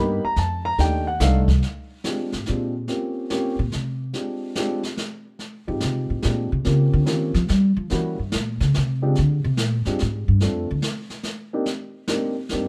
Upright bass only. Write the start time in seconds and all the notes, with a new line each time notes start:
Already playing: G2
0.24 muted upright bass stroke
0.37 F2
0.78 D#2
1.20 C2
2.33 G#2
2.49 A#2
3.59 A#2
3.74 C3
5.68 G#2
5.83 C3
6.10 A2
6.25 A#2
6.52 C3
6.66 C#3
6.93 D3
7.08 D#3
7.34 F3
7.50 G3
7.77 F3
7.92 E3
8.19 G2
8.35 A#2
8.60 C#3
8.77 C3
9.03 C#3
9.19 D3
9.44 C3
9.60 A#2
9.86 G2
10.02 G#2
10.28 G2
10.44 F2
10.71 D2
12.53 G2